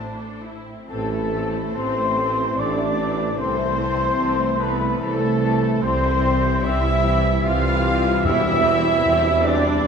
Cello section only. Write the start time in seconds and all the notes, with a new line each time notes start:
Already playing: A2
0.90 A3
1.75 C4
2.58 D4
3.38 C4
4.59 B3
5.01 A3
5.83 C4
6.64 E4
7.45 F4
8.25 E4
9.46 D4